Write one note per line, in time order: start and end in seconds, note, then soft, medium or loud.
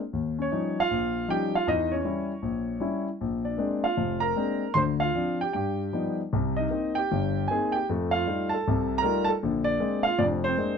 0.13 0.46 D#2 medium
0.39 0.51 C#4 soft
0.39 0.79 C#5 medium
0.52 0.78 F3 soft
0.52 0.78 G3 soft
0.52 0.78 C#4 soft
0.52 0.78 D#4 medium
0.80 1.26 F4 medium
0.80 1.27 F5 medium
0.91 1.23 A#1 medium
1.28 1.54 F3 soft
1.28 1.55 G3 soft
1.28 1.55 C#4 soft
1.28 1.54 D#4 medium
1.28 1.53 G4 medium
1.28 1.52 G5 medium
1.55 1.67 F4 medium
1.55 1.68 F5 medium
1.67 2.00 E2 medium
1.67 2.00 E3 medium
1.67 1.91 D#4 medium
1.67 1.93 D#5 medium
1.92 2.03 C#4 soft
1.92 3.02 C#5 medium
2.05 2.31 G3 soft
2.05 2.31 C#4 soft
2.05 2.31 E4 soft
2.42 2.75 A#1 medium
2.80 3.07 G3 soft
2.80 3.07 C#4 soft
2.80 3.07 E4 medium
3.21 3.54 A#1 medium
3.45 3.57 D4 soft
3.45 3.84 D5 medium
3.58 3.84 G#3 soft
3.58 3.84 A#3 soft
3.58 3.85 C4 soft
3.58 3.85 D4 medium
3.84 4.20 F4 medium
3.84 4.23 F5 medium
3.97 4.31 F1 medium
4.20 4.71 A#4 medium
4.20 4.75 A#5 medium
4.36 4.62 G#3 soft
4.36 4.63 A#3 soft
4.36 4.63 C4 soft
4.36 4.63 D4 medium
4.74 5.09 D2 medium
4.74 5.08 D3 medium
4.74 4.82 C5 medium
4.74 4.80 C6 medium
5.00 5.37 F4 medium
5.00 5.36 F5 medium
5.15 5.41 F3 soft
5.15 5.42 C4 soft
5.15 5.41 D4 medium
5.41 5.54 G4 medium
5.41 5.52 G5 medium
5.53 5.88 G2 soft
5.53 6.16 G4 medium
5.53 6.14 G5 medium
5.93 6.20 F3 soft
5.93 6.20 G3 soft
5.93 6.20 B3 soft
5.93 6.20 D#4 medium
6.33 6.66 C2 medium
6.33 6.66 C3 medium
6.57 6.70 D#4 medium
6.57 6.97 D#5 medium
6.71 6.98 A#3 soft
6.71 6.98 C4 soft
6.71 6.98 D#4 medium
6.95 7.46 G4 medium
6.95 7.50 G5 medium
7.11 7.45 G1 medium
7.11 7.45 G2 medium
7.48 7.77 A#3 soft
7.48 7.77 C4 soft
7.48 7.77 D#4 medium
7.48 7.74 G#4 medium
7.48 7.75 G#5 medium
7.72 7.88 G4 medium
7.72 7.86 G5 medium
7.89 8.22 F2 medium
7.89 8.23 A3 medium
8.11 8.26 F4 medium
8.11 8.52 F5 medium
8.27 8.53 G3 soft
8.27 8.54 A3 soft
8.27 8.54 D#4 soft
8.27 8.54 F4 medium
8.49 9.04 A5 medium
8.54 9.01 A4 medium
8.68 9.00 C2 medium
8.68 9.00 C3 medium
8.98 9.24 A#5 medium
9.02 9.30 G3 medium
9.02 9.30 A3 soft
9.02 9.30 D#4 soft
9.02 9.31 F4 medium
9.02 9.26 A#4 medium
9.25 9.30 A5 medium
9.29 9.34 A4 medium
9.43 9.76 A#1 medium
9.43 9.76 D3 medium
9.64 9.79 D4 medium
9.64 10.02 D5 loud
9.80 10.07 G#3 soft
9.80 10.07 A#3 soft
9.80 10.07 C4 soft
9.80 10.07 D4 medium
10.03 10.17 F5 medium
10.07 10.19 F4 medium
10.18 10.52 F1 medium
10.18 10.52 F2 medium
10.18 10.24 D5 medium
10.23 10.28 D4 medium
10.44 10.78 C5 medium
10.48 10.57 C4 medium
10.57 10.78 G#3 soft
10.57 10.78 A#3 soft
10.57 10.78 C4 soft
10.57 10.78 D4 soft